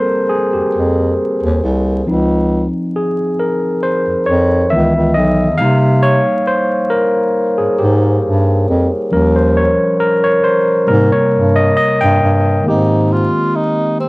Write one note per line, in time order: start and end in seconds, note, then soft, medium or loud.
0.00 2.07 G3 medium
0.00 2.08 A#3 soft
0.00 2.07 C4 medium
0.00 0.29 G#4 medium
0.00 2.07 A4 medium
0.00 2.07 A#4 medium
0.00 0.31 C5 loud
0.29 0.53 G#4 medium
0.53 0.62 F2 soft
0.53 0.94 G4 medium
0.75 1.14 F2 medium
1.43 1.61 D#2 medium
1.63 2.02 C2 medium
2.07 2.70 C#2 medium
2.07 3.34 F3 medium
2.07 3.35 C4 soft
2.07 3.35 D#4 medium
2.96 3.40 G#4 medium
3.39 3.84 A#4 medium
3.83 4.28 C5 medium
4.07 4.15 F2 soft
4.26 4.67 F2 medium
4.26 4.72 C#5 medium
4.70 4.93 C#2 loud
4.70 5.56 D#3 medium
4.70 5.55 E3 soft
4.70 5.55 B3 soft
4.70 5.16 E5 medium
4.96 5.14 C#2 medium
5.14 5.62 B1 medium
5.14 5.60 D#5 medium
5.58 6.23 C3 loud
5.58 9.08 G3 medium
5.58 9.08 A#3 soft
5.58 9.08 D#4 medium
5.58 5.78 F5 loud
6.03 6.44 C#5 loud
6.47 6.92 C5 medium
6.90 7.60 A#4 medium
7.58 7.68 G#2 soft
7.58 7.79 G#4 medium
7.79 8.20 G#2 loud
7.79 8.20 G4 medium
8.25 8.64 G2 medium
8.69 8.89 F2 medium
9.11 9.76 D#2 loud
9.11 9.71 F3 medium
9.11 9.71 G3 soft
9.11 9.72 C#4 medium
9.11 9.36 A#4 medium
9.36 9.57 C5 medium
9.57 9.77 C#5 medium
10.00 10.24 A#4 medium
10.24 10.45 C#5 medium
10.44 10.89 C5 medium
10.87 11.10 G#2 loud
10.87 12.60 C3 medium
10.87 12.60 G3 medium
10.87 12.60 A#3 medium
10.87 11.12 A#4 medium
11.12 11.21 G2 soft
11.12 11.57 C#5 medium
11.34 11.73 G2 medium
11.56 11.75 D#5 loud
11.77 12.00 D#5 medium
12.01 12.19 G2 loud
12.01 12.61 G5 loud
12.23 12.61 G2 medium
12.63 13.29 G#2 medium
12.63 14.09 D#3 medium
12.63 14.09 G#3 medium
12.63 14.09 A#3 medium
12.63 12.73 B3 soft
12.68 13.14 D#4 medium
12.68 14.09 G4 medium
12.73 14.09 C4 medium
13.12 13.57 F4 medium
13.55 13.98 D#4 medium
14.00 14.09 C4 medium